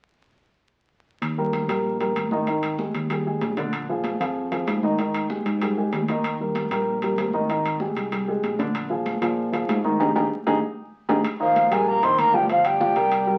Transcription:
1.22 fretless electric bass D#2, high conga, high timbale
1.37 grand piano G3 G4 A#4, high conga
1.53 high conga, high timbale
1.68 fretless electric bass A#1, grand piano G3 G4 A#4, high conga, high timbale
1.85 high conga
2.00 grand piano G3 G4 A#4, high conga, high timbale
2.15 fretless electric bass G#1, high conga, high timbale
2.31 grand piano D#3 D#4 D#5, high conga
2.47 grand piano D#3 D#4 D#5, high conga, high timbale
2.63 high conga, high timbale
2.79 grand piano G#3 G4 G#4, high conga
2.94 fretless electric bass D#2, high conga, high timbale
3.10 grand piano G3 G4 G#4, high conga, high timbale
3.26 grand piano G#3 G4 G#4, high conga
3.41 fretless electric bass A#1, high conga, high timbale, low timbale
3.57 grand piano D3 D4 D5, high conga, high timbale
3.73 high conga, high timbale
3.88 grand piano F3 F4 G#4, high conga
4.04 high conga, high timbale
4.20 fretless electric bass F2, grand piano F3 F4 G#4, high conga, high timbale
4.36 high conga
4.52 grand piano F3 F4 G#4, high conga, high timbale
4.67 fretless electric bass G#2, high conga, high timbale, low timbale
4.83 grand piano D#3 D#4 D#5, high conga
4.99 grand piano D#3 D#4 D#5, high conga, high timbale
5.14 high conga, high timbale
5.30 grand piano G#3 G4 G#4, high conga
5.46 fretless electric bass G#2, high conga, high timbale
5.61 grand piano G3 G4 G#4, high timbale
5.77 grand piano G#3 G4 G#4, high conga
5.92 fretless electric bass D#2, high conga, high timbale, low timbale
6.08 grand piano D#3 D#4 D#5, high conga, high timbale
6.24 high conga, high timbale
6.40 grand piano G3 G4 A#4, high conga
6.55 high conga, high timbale
6.71 fretless electric bass A#1, grand piano G3 G4 A#4, high conga, high timbale
6.87 high conga
7.02 grand piano G3 G4 A#4, high conga, high timbale
7.18 fretless electric bass G#1, high conga, high timbale, low timbale
7.33 grand piano D#3 D#4 D#5, high conga
7.49 grand piano D#3 D#4 D#5, high conga, high timbale
7.65 high conga, high timbale
7.80 grand piano G#3 G4 G#4, high conga
7.96 fretless electric bass C2, high conga, high timbale
8.12 grand piano G3 G4 G#4, high conga, high timbale
8.28 grand piano G#3 G4 G#4, high conga
8.43 fretless electric bass A#1, high conga, high timbale
8.59 grand piano D3 D4 D5, high conga, high timbale
8.75 high conga, high timbale
8.90 grand piano F3 F4 G#4, high conga
9.06 high conga, high timbale
9.21 fretless electric bass A#2, grand piano F3 F4 G#4, high timbale
9.38 high conga
9.52 grand piano F3 F4 G#4, high conga, high timbale
9.68 fretless electric bass G#2, high conga, high timbale, low timbale
9.84 grand piano D#3 D#4 D#5, high conga
10.00 fretless electric bass G#1, grand piano D#4 G4 G#4, high conga, high timbale
10.15 fretless electric bass G#1, grand piano D#4 G4 G#4, high conga, high timbale
10.47 fretless electric bass G#1, grand piano D#4 G4 G#4, high conga, high timbale
11.09 fretless electric bass G#1, grand piano D#4 G4 G#4, high conga, high timbale
11.24 high conga, high timbale
11.40 grand piano D#3 D#4 D#5, tenor saxophone F3, flute F5, high conga
11.56 high conga, high timbale
11.71 fretless electric bass A#1, grand piano G3 G4 A#4, tenor saxophone G#3, flute G#5, high timbale
11.87 tenor saxophone A#3, flute A#5, high conga
12.03 grand piano D#3 D#4 D#5, tenor saxophone C4, flute C6, high timbale
12.18 fretless electric bass G1, tenor saxophone A#3, flute A#5, high conga, high timbale
12.34 grand piano F3 F4 F5, tenor saxophone G3, flute G5, high conga
12.49 grand piano F3 F4 F5, tenor saxophone F3, flute F5, high conga, high timbale
12.65 tenor saxophone G3, flute G5, high timbale
12.80 grand piano F3 F4 F5, high conga
12.96 fretless electric bass C2, grand piano G3 G4 A#4, high conga, high timbale
13.12 high conga, high timbale
13.27 grand piano G3 G4 A#4, high conga

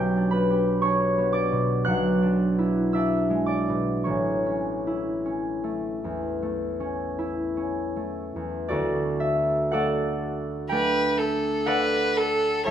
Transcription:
Already playing: harp B1 G4 G5
0.17 harp D4
0.31 harp B4 B5
0.50 harp G4
0.82 harp D4 C#5 C#6
1.18 harp B3
1.33 harp D5 D6
1.52 harp B2
1.85 harp B1 F#5 F#6
2.22 harp D4
2.58 harp E4
2.93 harp D4 E5 E6
3.30 harp G#3
3.46 harp D5 D6
3.69 harp B2
4.04 harp A1 C#5 C#6
4.46 harp C#4
4.87 harp E4
5.25 harp C#4
5.64 harp A3
6.04 harp E2
6.42 harp A3
6.80 harp C#4
7.19 harp E4
7.57 harp C#4
7.96 harp A3
8.36 harp E2
8.68 harp D2 F#4 A4 D5
9.20 harp E5
9.71 harp A3 A4 D5 F#5
10.69 harp A3 D4 G5, violin B4
11.18 violin A4
11.66 harp A4 D5 F#5, violin B4
12.17 violin A4
12.65 harp C#2 C#5 E5 A5, violin C#5

